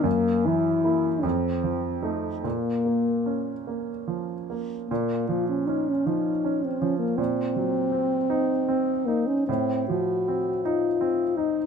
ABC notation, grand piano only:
X:1
M:6/8
L:1/8
Q:3/8=51
K:Bbm
V:1 name="Grand piano"
G,, _F, [B,_F] =F,, =F, [=A,E] | B,, B, D B, F, B, | B,, F, D F, D F, | B,, G, C E C E |
=A,, F, C E C E |]